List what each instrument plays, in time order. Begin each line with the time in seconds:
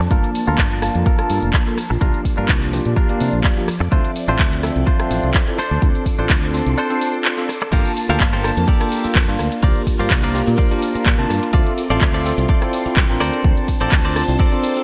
Already playing: string machine A5
0.00 muted clean electric guitar stroke
0.10 fingered electric bass G1, string machine F3 A#3, tine electric piano A#3 D4 F4 A5, clean electric guitar F4 A4 A#4, kick, closed hi-hat
0.24 closed hi-hat
0.35 open hi-hat
0.47 fingered electric bass D2, tine electric piano A#3 D4 F4 A5, clean electric guitar F4 A4 A#4, closed hi-hat
0.58 fingered electric bass G1, kick, clap, closed hi-hat
0.71 muted clean electric guitar stroke, closed hi-hat
0.82 tine electric piano A#3 D4 F4 A5, cross-stick, open hi-hat
0.95 fingered electric bass F2, closed hi-hat
1.06 clean electric guitar F4 A4 A#4, kick, closed hi-hat
1.18 tine electric piano A#3 D4 F4 A5, cross-stick, closed hi-hat
1.30 fingered electric bass G2, open hi-hat
1.43 fingered electric bass F1, closed hi-hat
1.53 kick, clap, closed hi-hat
1.66 tine electric piano A#3 D4 F4 A4, closed hi-hat
1.78 cross-stick, open hi-hat
1.90 fingered electric bass A#1, muted clean electric guitar stroke
2.01 fingered electric bass C2, tine electric piano A#3 D4 F4 G4, clean electric guitar D4 F4 A#4, string machine D5, kick, closed hi-hat
2.14 closed hi-hat
2.25 kick, open hi-hat
2.37 fingered electric bass G2, tine electric piano A#3 D4 F4 G4, clean electric guitar D4 F4 A#4, closed hi-hat
2.49 fingered electric bass C2, kick, clap, closed hi-hat
2.61 muted clean electric guitar stroke, closed hi-hat
2.73 tine electric piano A#3 D4 F4 G4, open hi-hat
2.85 fingered electric bass A#2, closed hi-hat
2.96 clean electric guitar D4 F4 A#4, kick, closed hi-hat
3.09 tine electric piano A#3 D4 F4 G4, closed hi-hat
3.20 fingered electric bass C3, open hi-hat
3.33 fingered electric bass A#1, closed hi-hat
3.44 kick, clap, closed hi-hat
3.57 tine electric piano A#3 D4 F4 G4, closed hi-hat
3.68 muted fingered electric bass stroke, cross-stick, open hi-hat
3.80 fingered electric bass F2, muted clean electric guitar stroke
3.91 fingered electric bass D2, tine electric piano C4 F4 A4 E5, clean electric guitar D4 F4 C5, string machine C6, kick, closed hi-hat
4.05 closed hi-hat
4.16 open hi-hat
4.28 fingered electric bass A1, tine electric piano C4 F4 A4 E5, clean electric guitar D4 F4 C5, closed hi-hat
4.39 fingered electric bass D2, kick, clap, closed hi-hat
4.52 muted clean electric guitar stroke, closed hi-hat
4.63 tine electric piano C4 F4 A4 E5, cross-stick, open hi-hat
4.76 fingered electric bass C2, closed hi-hat
4.87 clean electric guitar D4 F4 C5, kick, closed hi-hat
4.99 tine electric piano C4 F4 A4 E5, cross-stick, closed hi-hat
5.11 fingered electric bass A1, open hi-hat
5.23 fingered electric bass C2, closed hi-hat
5.34 kick, clap, closed hi-hat
5.47 tine electric piano C4 E4 F4 A4, closed hi-hat
5.58 clean electric guitar D4 A4 C5, string machine A4 C6, cross-stick, open hi-hat
5.71 fingered electric bass D2
5.82 tine electric piano C4 D4 F4 A4, kick, closed hi-hat
5.95 closed hi-hat
6.06 kick, open hi-hat
6.19 fingered electric bass A1, tine electric piano C4 D4 F4 A4, clean electric guitar D4 A4 C5, closed hi-hat
6.30 fingered electric bass D2, kick, clap, closed hi-hat
6.43 muted clean electric guitar stroke, closed hi-hat
6.53 tine electric piano C4 D4 F4 A4, open hi-hat
6.66 fingered electric bass C2, closed hi-hat
6.78 clean electric guitar D4 A4 C5, closed hi-hat
6.90 tine electric piano C4 D4 F4 A4, closed hi-hat
7.01 open hi-hat
7.14 closed hi-hat
7.25 clap, closed hi-hat
7.37 tine electric piano C4 D4 F4 A4, closed hi-hat
7.49 cross-stick, open hi-hat
7.62 muted clean electric guitar stroke, cross-stick, closed hi-hat
7.72 fingered electric bass G1, tine electric piano A#3 D4 F4 A5, string machine A#3 F4 A5, clean electric guitar G4 A4 A#4 F5, kick, crash, shaker
7.86 closed hi-hat
7.97 open hi-hat, shaker
8.09 fingered electric bass D2, tine electric piano A#3 D4 F4 A5, clean electric guitar G4 A4 A#4 F5, closed hi-hat, shaker
8.20 fingered electric bass G1, kick, clap, shaker
8.33 clean electric guitar G4 A4 A#4 C5, closed hi-hat
8.44 tine electric piano A#3 D4 F4 A5, cross-stick, open hi-hat, shaker
8.57 fingered electric bass F2, closed hi-hat, shaker
8.68 clean electric guitar G4 A4 A#4 D5, kick, shaker
8.80 tine electric piano A#3 D4 F4 A4, cross-stick, closed hi-hat, shaker
8.92 open hi-hat, shaker
9.04 tine electric piano A#3 D4 F4 A4, muted fingered electric bass stroke, closed hi-hat, shaker
9.15 fingered electric bass F2, kick, clap, shaker
9.28 fingered electric bass G2, tine electric piano A#3 D4 F4, shaker
9.39 fingered electric bass D2, cross-stick, open hi-hat, shaker
9.52 closed hi-hat, shaker
9.62 fingered electric bass C2, tine electric piano A#3 D4 F4 G4, clean electric guitar F4 A#4 C5 D5, string machine A#4 D5, kick, shaker
9.76 closed hi-hat
9.87 kick, open hi-hat, shaker
9.99 fingered electric bass G2, tine electric piano A#3 D4 F4 G4, clean electric guitar F4 A#4 C5 D5, closed hi-hat, shaker
10.10 fingered electric bass C2, kick, clap, shaker
10.23 clean electric guitar F4 A#4 C5 D5, closed hi-hat
10.34 tine electric piano A#3 D4 F4 G4, open hi-hat, shaker
10.47 fingered electric bass A#2, closed hi-hat, shaker
10.58 clean electric guitar F4 A#4 C5 D5, kick, shaker
10.71 tine electric piano A#3 D4 F4 G4, closed hi-hat, shaker
10.82 open hi-hat, shaker
10.95 tine electric piano A#3 D4 F4 G4, muted fingered electric bass stroke, closed hi-hat, shaker
11.06 fingered electric bass A#2, kick, clap, shaker
11.18 fingered electric bass C3, tine electric piano A#3 D4 F4 A5, shaker
11.30 fingered electric bass G2, cross-stick, open hi-hat, shaker
11.43 closed hi-hat, shaker
11.53 fingered electric bass D2, tine electric piano C4 F4 A4 E5, clean electric guitar F4 A4 C5 D5, string machine C6, kick, shaker
11.67 closed hi-hat
11.78 open hi-hat, shaker
11.90 fingered electric bass A1, tine electric piano C4 F4 A4 E5, clean electric guitar F4 A4 C5 D5, closed hi-hat, shaker
12.01 fingered electric bass D2, kick, clap, shaker
12.14 clean electric guitar F4 A4 C5 D5, closed hi-hat
12.25 tine electric piano C4 F4 A4 E5, open hi-hat, shaker
12.38 fingered electric bass C2, closed hi-hat, shaker
12.49 clean electric guitar F4 A4 C5 D5, kick, shaker
12.61 tine electric piano C4 E4 F4 A4, cross-stick, closed hi-hat, shaker
12.73 open hi-hat, shaker
12.85 tine electric piano C4 E4 F4 A4, muted fingered electric bass stroke, closed hi-hat, shaker
12.96 fingered electric bass C2, kick, clap, shaker
13.09 fingered electric bass A1, tine electric piano C4 D4 F4 A#4, shaker
13.20 fingered electric bass D2, string machine D4 C5 A5, clean electric guitar A4 A#4 C5 D5, cross-stick, open hi-hat, shaker
13.33 closed hi-hat, shaker
13.44 fingered electric bass D2, tine electric piano C4 D4 F4 A5, kick, shaker
13.57 closed hi-hat, shaker
13.68 kick, open hi-hat, shaker
13.80 fingered electric bass A1, tine electric piano C4 D4 F4 A5, clean electric guitar A4 A#4 C5 D5, closed hi-hat, shaker
13.92 fingered electric bass D2, kick, clap, shaker
14.05 clean electric guitar A4 A#4 C5 D5, closed hi-hat
14.16 tine electric piano C4 D4 F4 A5, cross-stick, open hi-hat, shaker
14.28 fingered electric bass C2, closed hi-hat, shaker
14.39 clean electric guitar A4 A#4 C5 D5, kick, shaker
14.52 tine electric piano C4 D4 F4 A4, closed hi-hat, shaker
14.64 open hi-hat, shaker
14.76 tine electric piano C4 D4 F4 A4, closed hi-hat, shaker